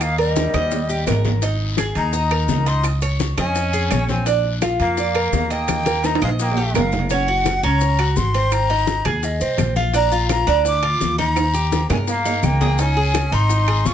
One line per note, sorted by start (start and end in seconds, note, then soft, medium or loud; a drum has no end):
0.00 0.48 D#2 medium
0.00 0.19 A#3 medium
0.00 0.17 D#5 medium
0.00 0.19 F5 loud
0.00 high bongo medium
0.00 high conga soft
0.00 high timbale medium
0.00 long guiro medium
0.00 claves medium
0.00 maracas medium
0.18 1.21 G3 medium
0.18 0.53 A#4 medium
0.18 1.21 D#5 medium
0.18 high bongo soft
0.18 high conga soft
0.18 high timbale medium
0.36 high bongo medium
0.36 high conga medium
0.36 high timbale medium
0.36 short guiro medium
0.36 maracas medium
0.54 1.03 D#2 medium
0.54 0.88 D#5 medium
0.54 high conga medium
0.54 high timbale medium
0.54 short guiro medium
0.54 claves medium
0.54 maracas soft
0.71 high bongo medium
0.71 high conga soft
0.71 low timbale medium
0.71 long guiro medium
0.71 maracas medium
0.89 1.07 G4 medium
0.89 high bongo soft
0.89 high conga soft
0.89 maracas medium
1.07 1.90 G#1 medium
1.07 1.41 A#4 medium
1.07 high bongo soft
1.07 low bongo medium
1.07 high conga medium
1.07 low timbale medium
1.07 short guiro medium
1.07 claves medium
1.07 maracas medium
1.24 high bongo soft
1.24 high conga medium
1.24 low timbale medium
1.24 short guiro medium
1.24 maracas soft
1.42 1.77 D#4 medium
1.42 high bongo medium
1.42 high timbale medium
1.42 long guiro medium
1.42 maracas medium
1.60 high bongo soft
1.60 high conga soft
1.77 2.12 G#4 medium
1.77 high bongo medium
1.77 high conga medium
1.77 high timbale medium
1.77 short guiro medium
1.77 claves medium
1.77 maracas medium
1.95 2.45 D#2 medium
1.95 2.67 D#4 medium
1.95 2.69 A#5 medium
1.95 high timbale medium
1.95 short guiro medium
1.95 maracas soft
2.13 2.30 D#5 medium
2.13 high bongo medium
2.13 high conga soft
2.13 long guiro medium
2.13 maracas medium
2.31 2.65 A#4 medium
2.31 high bongo soft
2.31 high conga soft
2.31 high timbale medium
2.31 claves medium
2.48 3.32 C#2 medium
2.48 high bongo soft
2.48 low bongo medium
2.48 high conga medium
2.48 low timbale medium
2.48 short guiro medium
2.48 maracas medium
2.66 2.85 D#4 medium
2.66 3.01 D#5 medium
2.66 2.85 C6 medium
2.66 high bongo soft
2.66 high timbale medium
2.66 short guiro medium
2.66 maracas soft
2.84 high bongo medium
2.84 high conga soft
2.84 high timbale medium
2.84 long guiro medium
2.84 claves medium
2.84 maracas medium
3.02 3.37 C#5 medium
3.02 high bongo soft
3.02 high conga soft
3.02 high timbale medium
3.02 maracas medium
3.20 high bongo medium
3.20 high conga medium
3.20 short guiro medium
3.20 maracas medium
3.37 3.87 F2 medium
3.37 4.05 C#4 loud
3.37 3.72 D#5 medium
3.37 4.05 G#5 medium
3.37 high conga medium
3.37 high timbale medium
3.37 short guiro medium
3.37 claves medium
3.37 maracas soft
3.55 high bongo medium
3.55 high conga soft
3.55 high timbale medium
3.55 long guiro medium
3.55 maracas medium
3.73 3.90 G#4 medium
3.73 high bongo soft
3.73 high conga soft
3.73 maracas medium
3.91 4.74 A#1 medium
3.91 4.25 C#5 medium
3.91 high bongo soft
3.91 low bongo medium
3.91 high conga medium
3.91 high timbale medium
3.91 low timbale medium
3.91 short guiro medium
3.91 claves medium
3.91 maracas medium
4.09 4.26 C4 medium
4.09 4.26 G#5 medium
4.09 high bongo soft
4.09 high conga medium
4.09 short guiro medium
4.09 maracas soft
4.26 4.61 D4 medium
4.26 high bongo medium
4.26 high conga soft
4.26 high timbale medium
4.26 long guiro medium
4.26 maracas medium
4.44 high bongo soft
4.44 high conga soft
4.62 4.96 F4 medium
4.62 high bongo medium
4.62 high conga loud
4.62 high timbale medium
4.62 short guiro medium
4.62 claves medium
4.62 maracas medium
4.79 5.29 F2 medium
4.79 5.51 A#3 medium
4.79 5.54 F5 medium
4.79 high conga soft
4.79 high timbale medium
4.79 short guiro medium
4.79 maracas soft
4.97 5.15 D5 medium
4.97 high bongo medium
4.97 high conga soft
4.97 long guiro medium
4.97 maracas medium
5.15 5.49 A#4 medium
5.15 high bongo soft
5.15 high conga soft
5.15 high timbale medium
5.15 claves medium
5.33 6.16 D#2 medium
5.33 high bongo soft
5.33 low bongo medium
5.33 high conga medium
5.33 low timbale medium
5.33 short guiro medium
5.33 maracas medium
5.50 6.06 A#3 medium
5.50 5.85 D#5 medium
5.50 6.07 G5 medium
5.50 high bongo soft
5.50 high timbale medium
5.50 short guiro medium
5.50 maracas soft
5.68 high bongo medium
5.68 high conga medium
5.68 high timbale medium
5.68 long guiro medium
5.68 claves medium
5.68 maracas medium
5.86 6.21 A#4 medium
5.86 high bongo soft
5.86 high conga loud
5.86 high timbale medium
5.86 maracas medium
6.04 6.22 D#4 medium
6.04 6.22 A#5 medium
6.04 high bongo medium
6.04 high timbale medium
6.04 short guiro medium
6.04 maracas medium
6.15 high timbale loud
6.21 6.71 A#1 medium
6.21 6.30 G#3 medium
6.21 6.56 D#5 medium
6.21 6.30 F5 medium
6.21 low conga medium
6.21 short guiro medium
6.21 claves medium
6.21 maracas soft
6.28 high timbale loud
6.39 6.89 A#3 medium
6.39 6.74 G5 medium
6.39 high bongo medium
6.39 long guiro medium
6.39 maracas medium
6.51 low timbale medium
6.57 6.74 G4 medium
6.57 high bongo soft
6.74 7.57 F#1 medium
6.74 7.09 A#4 medium
6.74 7.09 F5 medium
6.74 high bongo soft
6.74 low bongo medium
6.74 low conga medium
6.74 low timbale loud
6.74 short guiro medium
6.74 claves medium
6.74 maracas medium
6.92 high bongo soft
6.92 low conga medium
6.92 short guiro medium
6.92 maracas soft
6.99 low timbale medium
7.10 7.28 C#4 medium
7.10 7.65 F#5 loud
7.10 high bongo medium
7.10 high conga soft
7.10 high timbale medium
7.10 long guiro medium
7.10 maracas medium
7.28 7.63 F#4 medium
7.28 high bongo soft
7.28 high conga soft
7.45 high bongo medium
7.45 high conga medium
7.45 high timbale medium
7.45 short guiro medium
7.45 claves medium
7.45 maracas medium
7.63 8.13 C#2 medium
7.63 7.98 C#4 medium
7.63 8.18 A#5 medium
7.63 high conga soft
7.63 high timbale medium
7.63 short guiro medium
7.63 maracas soft
7.81 high bongo medium
7.81 high conga soft
7.81 long guiro medium
7.81 maracas medium
7.98 8.34 F#4 medium
7.98 high bongo soft
7.98 high conga soft
7.98 high timbale loud
7.98 claves medium
8.16 9.00 G#1 medium
8.16 8.54 C6 loud
8.16 high bongo soft
8.16 low bongo medium
8.16 high conga medium
8.16 short guiro medium
8.16 maracas medium
8.34 8.69 C4 medium
8.34 high bongo soft
8.34 high timbale medium
8.34 short guiro medium
8.34 maracas soft
8.52 9.07 A#5 loud
8.52 high bongo medium
8.52 high conga soft
8.52 high timbale medium
8.52 long guiro medium
8.52 claves medium
8.52 maracas medium
8.70 9.05 D#4 medium
8.70 high bongo soft
8.70 high conga soft
8.70 high timbale medium
8.87 high bongo medium
8.87 high conga loud
8.87 short guiro medium
8.87 maracas medium
9.05 9.38 D#2 medium
9.05 9.40 G#4 medium
9.05 9.26 G#5 medium
9.05 high conga medium
9.05 low conga medium
9.05 high timbale medium
9.05 short guiro medium
9.05 claves medium
9.05 maracas soft
9.23 9.59 D#5 medium
9.23 high bongo medium
9.23 high conga soft
9.23 high timbale medium
9.23 long guiro medium
9.23 maracas medium
9.40 9.57 C2 medium
9.40 9.76 C4 medium
9.40 high bongo soft
9.40 high conga soft
9.40 maracas medium
9.58 10.41 A#1 loud
9.58 high bongo soft
9.58 low bongo medium
9.58 high conga medium
9.58 high timbale medium
9.58 short guiro medium
9.58 claves medium
9.58 maracas medium
9.76 9.94 F4 medium
9.76 high bongo soft
9.76 high conga medium
9.76 short guiro medium
9.76 maracas soft
9.94 10.12 D4 medium
9.94 10.28 A#5 loud
9.94 high bongo medium
9.94 high conga soft
9.94 high timbale medium
9.94 long guiro medium
9.94 maracas medium
10.11 10.47 F4 medium
10.11 high bongo soft
10.11 high conga soft
10.11 maracas medium
10.29 10.64 A#5 medium
10.29 high bongo medium
10.29 high conga loud
10.29 high timbale medium
10.29 short guiro medium
10.29 claves medium
10.29 maracas medium
10.47 10.97 D2 medium
10.47 10.82 D4 medium
10.47 high conga soft
10.47 high timbale medium
10.47 short guiro medium
10.47 maracas soft
10.65 11.16 D6 loud
10.65 high bongo medium
10.65 high conga soft
10.65 long guiro medium
10.65 maracas medium
10.83 11.18 F4 medium
10.83 high bongo soft
10.83 high conga soft
10.83 high timbale medium
10.83 claves medium
11.00 11.84 D#2 medium
11.00 high bongo soft
11.00 low bongo medium
11.00 high conga medium
11.00 short guiro medium
11.00 maracas medium
11.18 11.53 D#4 medium
11.18 11.87 A#5 loud
11.18 high bongo soft
11.18 high conga medium
11.18 high timbale medium
11.18 short guiro medium
11.18 maracas soft
11.36 high bongo medium
11.36 high timbale loud
11.36 long guiro medium
11.36 claves medium
11.36 maracas medium
11.54 11.89 G4 medium
11.54 high bongo soft
11.54 high conga soft
11.54 maracas medium
11.72 high bongo medium
11.72 high conga medium
11.72 high timbale medium
11.72 short guiro medium
11.72 maracas medium
11.89 12.39 G2 medium
11.89 12.24 A#4 medium
11.89 11.98 G#5 medium
11.89 high conga medium
11.89 low conga medium
11.89 low timbale medium
11.89 short guiro medium
11.89 claves medium
11.89 maracas soft
12.07 12.44 A#3 medium
12.07 12.46 F5 medium
12.07 high bongo medium
12.07 high conga soft
12.07 low timbale medium
12.07 long guiro medium
12.07 maracas medium
12.25 12.60 D#4 medium
12.25 high bongo soft
12.25 high conga soft
12.25 low timbale medium
12.25 maracas medium
12.43 13.26 C#2 loud
12.43 12.81 A#3 medium
12.43 12.81 G5 medium
12.43 high bongo soft
12.43 low bongo medium
12.43 high conga medium
12.43 low timbale medium
12.43 short guiro medium
12.43 claves medium
12.43 maracas medium
12.61 12.78 G#4 medium
12.61 high bongo soft
12.61 high conga medium
12.61 low timbale medium
12.61 short guiro medium
12.61 maracas soft
12.78 13.34 C#4 medium
12.78 12.96 D#4 medium
12.78 13.35 G#5 loud
12.78 high bongo medium
12.78 high timbale medium
12.78 long guiro medium
12.78 maracas medium
12.97 13.31 G#4 medium
12.97 high bongo soft
12.97 high conga soft
13.14 high bongo medium
13.14 high conga medium
13.14 high timbale medium
13.14 short guiro medium
13.14 claves medium
13.14 maracas medium
13.32 13.82 G#1 medium
13.32 13.67 D#4 medium
13.32 13.88 D#4 medium
13.32 13.88 C6 medium
13.32 high conga soft
13.32 high timbale medium
13.32 short guiro medium
13.32 maracas soft
13.49 high bongo medium
13.49 high conga soft
13.49 long guiro medium
13.49 maracas medium
13.67 13.94 G#4 medium
13.67 high bongo soft
13.67 high conga soft
13.67 high timbale medium
13.67 claves medium
13.85 13.94 D#2 medium
13.85 13.94 F4 medium
13.85 13.94 C#6 loud
13.85 high bongo soft
13.85 low bongo medium
13.85 high conga medium
13.85 short guiro medium
13.85 maracas medium